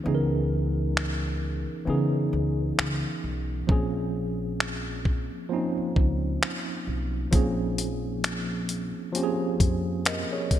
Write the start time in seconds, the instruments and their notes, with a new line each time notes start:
Already playing: tine electric piano E3 B3 C#4 D#4 G#4
0.04 upright bass C#2, tine electric piano E3 B3 C#4 D#4
0.08 tine electric piano G#4
0.15 tine electric piano A#4
0.97 finger snap
1.85 upright bass C#3, tine electric piano E3 B3 C#4 D#4
1.90 tine electric piano G#4
2.33 upright bass C#2
2.78 upright bass C#2, finger snap
3.24 upright bass B1
3.67 upright bass A#1, tine electric piano F3 A#3 C4 C#4, kick
3.71 tine electric piano G#4
4.60 finger snap
5.05 kick
5.49 tine electric piano F3 A#3 C4 C#4
5.53 tine electric piano D#4
5.77 muted upright bass stroke
5.96 upright bass C#2, kick
6.43 finger snap
6.87 upright bass B1
7.31 upright bass A#1, tine electric piano F3 A#3 C4 C#4, kick, closed hi-hat
7.35 tine electric piano G#4
7.78 closed hi-hat
8.24 finger snap, closed hi-hat
8.69 closed hi-hat
9.13 tine electric piano F3 A#3 C4 C#4, closed hi-hat
9.17 tine electric piano G4
9.23 tine electric piano G#4
9.60 upright bass F2, kick, closed hi-hat
10.05 tine electric piano A#4 D#5, finger snap, closed hi-hat
10.32 tine electric piano G#4 C#5
10.51 kick, closed hi-hat